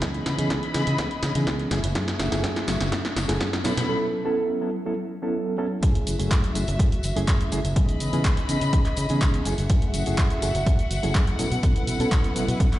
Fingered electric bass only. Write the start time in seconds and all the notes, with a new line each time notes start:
0.02 C#2
0.26 C#3
0.39 C#3
0.50 C#2
0.75 C#3
0.87 C#3
0.99 C#2
1.23 C#3
1.35 C#3
1.47 C#2
1.71 F#1
1.84 F#1
1.95 F#2
2.20 F#1
2.32 F#1
2.44 F#2
2.68 F#1
2.80 F#1
2.92 F#2
3.16 F#1
3.29 F#1
3.41 F#2
3.65 B2
3.77 B2
5.83 F#2
6.07 F#1
6.19 F#1
6.31 F#2
6.55 F#1
6.68 F#1
6.79 F#2
7.04 F#1
7.16 F#1
7.28 F#2
7.52 F#1
7.64 F#1
7.76 C#2
8.00 C#3
8.13 C#3
8.25 C#2
8.49 C#3
8.62 C#3
8.73 C#2
8.98 C#3
9.10 C#3
9.21 C#2
9.46 F#1
9.58 F#1
9.70 F#2
9.94 F#1
10.07 F#1
10.18 F#2
10.43 F#1
10.55 F#1
10.67 F#2
10.91 F#1
11.03 F#1
11.15 F#2
11.39 B2
11.52 B2
11.63 B1
11.87 B2
12.00 B2
12.12 B1
12.36 B2
12.48 B2
12.60 B1